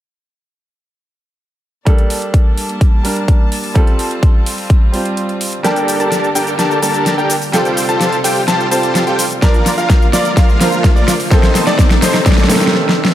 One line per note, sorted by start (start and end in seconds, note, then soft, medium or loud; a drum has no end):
1.85 3.01 G3 medium
1.85 5.61 G3 medium
1.85 3.02 A#3 medium
1.85 3.73 A#3 medium
1.85 3.73 D4 medium
1.85 3.02 D4 medium
1.85 3.02 A4 medium
1.85 5.61 A5 medium
1.85 kick loud
1.85 closed hi-hat medium
1.98 closed hi-hat soft
2.10 open hi-hat medium
2.22 closed hi-hat soft
2.34 kick loud
2.34 closed hi-hat medium
2.58 open hi-hat loud
2.69 closed hi-hat medium
2.81 kick loud
2.81 closed hi-hat medium
3.03 3.72 G3 medium
3.03 3.72 A#3 medium
3.03 3.73 D4 medium
3.03 3.73 A#4 medium
3.03 open hi-hat medium
3.17 closed hi-hat soft
3.28 kick loud
3.28 closed hi-hat medium
3.52 open hi-hat loud
3.64 open hi-hat medium
3.74 4.90 G3 medium
3.74 4.91 C4 medium
3.74 5.63 C4 medium
3.74 5.62 F4 medium
3.74 4.91 F4 medium
3.74 4.91 A4 loud
3.74 kick loud
3.74 closed hi-hat medium
3.87 closed hi-hat soft
3.99 open hi-hat loud
4.11 closed hi-hat soft
4.23 kick loud
4.23 closed hi-hat medium
4.46 open hi-hat loud
4.58 open hi-hat medium
4.70 kick loud
4.70 closed hi-hat medium
4.92 5.61 G3 medium
4.92 5.61 C4 medium
4.92 5.62 F4 medium
4.92 5.62 C5 medium
4.92 open hi-hat loud
5.05 closed hi-hat medium
5.17 closed hi-hat medium
5.29 closed hi-hat soft
5.41 open hi-hat loud
5.53 closed hi-hat medium
5.63 5.97 G1 loud
5.63 7.51 D3 medium
5.63 6.79 G3 medium
5.63 6.79 A#3 medium
5.63 7.51 A#3 medium
5.63 5.97 D4 medium
5.63 6.80 D4 medium
5.63 5.97 G4 medium
5.63 7.51 G4 medium
5.63 5.97 A4 medium
5.63 5.97 A#4 medium
5.63 5.97 G5 medium
5.63 5.97 G5 loud
5.63 6.80 A5 loud
5.63 snare soft
5.63 closed hi-hat medium
5.63 riser medium
5.63 shaker soft
5.76 closed hi-hat soft
5.76 shaker soft
5.88 open hi-hat loud
5.88 shaker medium
6.00 6.33 G1 medium
6.00 6.29 D4 medium
6.00 6.29 G4 medium
6.00 6.29 A4 medium
6.00 6.29 A#4 medium
6.00 6.29 A5 loud
6.00 closed hi-hat medium
6.00 shaker soft
6.12 snare soft
6.12 closed hi-hat medium
6.12 shaker soft
6.24 shaker soft
6.35 6.57 G1 medium
6.35 6.53 D4 medium
6.35 6.53 G4 medium
6.35 6.53 A4 medium
6.35 6.53 A#4 medium
6.35 6.53 G5 loud
6.35 open hi-hat loud
6.35 shaker medium
6.47 closed hi-hat medium
6.47 shaker soft
6.59 6.80 G1 loud
6.59 6.80 D4 medium
6.59 6.80 G4 medium
6.59 6.80 A4 medium
6.59 6.80 A#4 medium
6.59 6.80 A5 loud
6.59 snare medium
6.59 closed hi-hat medium
6.59 shaker soft
6.71 shaker soft
6.81 7.16 G1 loud
6.81 7.50 G3 medium
6.81 7.50 A#3 medium
6.81 7.15 D4 medium
6.81 7.51 D4 medium
6.81 7.15 G4 medium
6.81 7.15 A4 medium
6.81 7.15 A#4 medium
6.81 7.15 A5 medium
6.81 open hi-hat loud
6.81 shaker medium
6.94 closed hi-hat medium
6.94 shaker soft
7.06 snare medium
7.06 closed hi-hat medium
7.06 shaker soft
7.18 7.51 G1 loud
7.18 7.36 D4 medium
7.18 7.36 G4 medium
7.18 7.36 A4 medium
7.18 7.36 A#4 medium
7.18 7.36 G5 loud
7.18 shaker soft
7.30 open hi-hat loud
7.30 shaker medium
7.42 open hi-hat medium
7.42 shaker soft
7.52 7.86 F1 medium
7.52 9.40 C3 medium
7.52 8.68 G3 medium
7.52 9.40 G3 medium
7.52 8.68 C4 medium
7.52 9.40 F4 medium
7.52 7.86 F4 medium
7.52 8.69 F4 medium
7.52 7.86 G4 medium
7.52 7.86 A4 medium
7.52 8.69 A4 loud
7.52 7.86 C5 medium
7.52 7.86 G5 loud
7.52 7.86 G5 medium
7.52 snare medium
7.52 closed hi-hat medium
7.52 shaker soft
7.65 closed hi-hat soft
7.65 shaker soft
7.77 open hi-hat loud
7.77 shaker medium
7.89 8.22 F1 loud
7.89 8.18 F4 loud
7.89 8.18 G4 medium
7.89 8.18 A4 medium
7.89 8.18 C5 medium
7.89 8.18 A5 loud
7.89 closed hi-hat medium
7.89 shaker soft
8.01 snare medium
8.01 closed hi-hat medium
8.01 shaker soft
8.12 closed hi-hat soft
8.12 shaker soft
8.24 8.46 F1 medium
8.24 8.42 F4 medium
8.24 8.42 G4 medium
8.24 8.42 A4 medium
8.24 8.42 C5 medium
8.24 8.42 G5 loud
8.24 open hi-hat loud
8.24 shaker medium
8.36 open hi-hat medium
8.36 shaker soft
8.48 8.69 F1 loud
8.48 8.69 F4 medium
8.48 8.69 G4 medium
8.48 8.69 A4 medium
8.48 8.69 C5 medium
8.48 8.69 A5 loud
8.48 snare medium
8.48 closed hi-hat medium
8.48 shaker soft
8.60 shaker soft
8.70 9.05 F1 loud
8.70 9.39 G3 medium
8.70 9.39 C4 medium
8.70 9.04 F4 medium
8.70 9.40 F4 medium
8.70 9.04 G4 medium
8.70 9.04 A4 medium
8.70 9.04 C5 medium
8.70 9.40 C5 medium
8.70 9.04 A5 medium
8.70 open hi-hat loud
8.70 shaker medium
8.83 closed hi-hat medium
8.83 shaker soft
8.95 snare medium
8.95 closed hi-hat medium
8.95 shaker soft
9.07 9.40 F1 loud
9.07 9.25 F4 medium
9.07 9.25 G4 medium
9.07 9.25 A4 medium
9.07 9.25 C5 medium
9.07 9.25 G5 loud
9.07 9.25 G5 medium
9.07 closed hi-hat soft
9.07 shaker soft
9.19 open hi-hat loud
9.19 shaker medium
9.31 closed hi-hat medium
9.31 shaker soft
9.41 9.75 A#1 loud
9.41 11.29 D3 medium
9.41 10.57 F3 medium
9.41 11.29 F3 medium
9.41 10.57 A#3 medium
9.41 11.29 A#3 medium
9.41 10.58 D4 medium
9.41 11.29 F4 medium
9.41 9.75 F4 medium
9.41 9.75 A#4 medium
9.41 10.58 A#4 loud
9.41 9.75 D5 loud
9.41 kick loud
9.41 snare medium
9.41 closed hi-hat medium
9.41 shaker soft
9.54 closed hi-hat soft
9.54 shaker soft
9.66 snare medium
9.66 open hi-hat loud
9.66 shaker medium
9.78 10.11 A#1 loud
9.78 10.07 F4 loud
9.78 10.07 A#4 medium
9.78 10.07 F5 loud
9.78 closed hi-hat medium
9.78 shaker soft
9.90 kick loud
9.90 snare medium
9.90 closed hi-hat medium
9.90 shaker soft
10.02 shaker soft
10.13 10.35 A#1 loud
10.13 10.31 F4 loud
10.13 10.31 A#4 medium
10.13 10.31 D5 loud
10.13 snare medium
10.13 open hi-hat loud
10.13 shaker medium
10.25 closed hi-hat medium
10.25 shaker soft
10.37 10.58 A#1 loud
10.37 10.58 F4 medium
10.37 10.58 A#4 medium
10.37 10.58 F5 loud
10.37 kick loud
10.37 snare medium
10.37 closed hi-hat medium
10.37 shaker soft
10.49 shaker soft
10.59 10.94 A#1 loud
10.59 11.28 F3 medium
10.59 11.28 A#3 medium
10.59 11.29 D4 medium
10.59 10.93 F4 medium
10.59 10.93 A#4 medium
10.59 11.29 C5 medium
10.59 10.93 F5 loud
10.59 snare medium
10.59 open hi-hat loud
10.59 shaker medium
10.72 closed hi-hat soft
10.72 shaker soft
10.84 kick loud
10.84 snare medium
10.84 closed hi-hat medium
10.84 shaker soft
10.96 11.29 A#1 loud
10.96 11.14 F4 medium
10.96 11.14 A#4 medium
10.96 11.14 D5 loud
10.96 shaker soft
11.08 snare medium
11.08 open hi-hat loud
11.08 shaker medium
11.20 open hi-hat medium
11.20 shaker soft
11.30 11.64 A1 loud
11.30 13.14 C3 medium
11.30 12.46 D#3 loud
11.30 13.14 D#3 medium
11.30 12.46 A3 medium
11.30 13.14 A3 medium
11.30 12.47 C4 medium
11.30 11.64 D#4 medium
11.30 13.14 D#4 medium
11.30 11.64 A4 medium
11.30 12.47 A4 loud
11.30 11.64 C5 loud
11.30 kick loud
11.30 snare medium
11.30 closed hi-hat medium
11.30 shaker soft
11.43 snare medium
11.43 closed hi-hat soft
11.43 shaker soft
11.55 snare medium
11.55 open hi-hat loud
11.55 shaker medium
11.67 12.00 A1 loud
11.67 11.96 D#4 loud
11.67 11.96 A4 medium
11.67 11.96 D5 loud
11.67 snare medium
11.67 closed hi-hat medium
11.67 shaker soft
11.79 kick loud
11.79 snare medium
11.79 closed hi-hat medium
11.79 shaker soft
11.90 snare medium
11.90 closed hi-hat soft
11.90 shaker soft
12.02 12.23 A1 medium
12.02 12.20 D#4 loud
12.02 12.20 A4 medium
12.02 12.20 C5 loud
12.02 snare loud
12.02 open hi-hat loud
12.02 shaker medium
12.14 snare medium
12.14 open hi-hat medium
12.14 shaker soft
12.26 12.44 A1 loud
12.26 12.47 D#4 loud
12.26 12.47 A4 medium
12.26 12.47 D5 loud
12.26 kick loud
12.26 snare loud
12.26 closed hi-hat medium
12.26 shaker soft
12.32 snare loud
12.38 snare medium
12.38 shaker soft
12.44 snare medium
12.48 12.72 D#3 loud
12.48 12.73 A3 medium
12.48 12.73 C4 medium
12.48 12.74 A4 loud
12.48 snare loud
12.48 open hi-hat loud
12.48 shaker medium
12.55 snare medium
12.61 snare medium
12.61 closed hi-hat soft
12.61 shaker soft
12.67 snare medium
12.73 snare medium
12.89 snare medium
13.05 snare loud